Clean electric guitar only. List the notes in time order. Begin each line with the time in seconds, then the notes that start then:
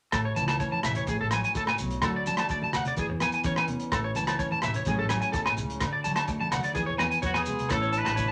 0.12 A4
0.25 C#5
0.36 A5
0.48 A5
0.60 C#5
0.72 A5
0.85 E5
0.97 C#5
1.09 G#4
1.21 A4
1.33 G#5
1.45 G#5
1.57 A4
1.69 G#5
2.04 A4
2.16 D5
2.27 A5
2.39 A5
2.51 D5
2.64 A5
2.76 F#5
2.88 D5
2.99 G#4
3.10 muted clean electric guitar stroke
3.22 G#5
3.34 G#5
3.46 C#5
3.58 G#5
3.92 A4
4.04 C#5
4.16 A5
4.29 A5
4.39 C#5
4.52 A5
4.64 E5
4.76 C#5
4.88 G#4
4.99 A4
5.10 G#5
5.22 G#5
5.32 A4
5.46 G#5
5.81 muted clean electric guitar stroke
5.93 D5
6.04 A5
6.17 A5
6.29 muted clean electric guitar stroke
6.41 A5
6.52 F#5
6.64 D5
6.75 G#4
6.86 C#5
6.99 G#5
7.11 G#5
7.22 C#5
7.34 G#5
7.69 A4
7.82 C#5
7.93 A5
8.05 A5
8.16 C#5
8.28 A5